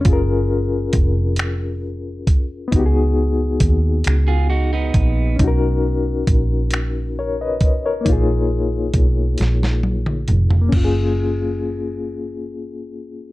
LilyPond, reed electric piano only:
\new Staff \with { instrumentName = "Reed electric piano" } { \time 6/8 \key fis \major \tempo 4. = 45 << { r2. | r2. | r2 <ais' cis''>16 <b' dis''>8 <ais' cis''>16~ | <ais' cis''>16 r2 r8. |
r2. | } \\ { <cis' eis' gis' ais'>2. | <b dis' fis' g' gis'>2. | <cis' dis' fis' ais'>2. | <ais dis' eis' gis'>2. |
<ais cis' eis' gis'>2. | } >> }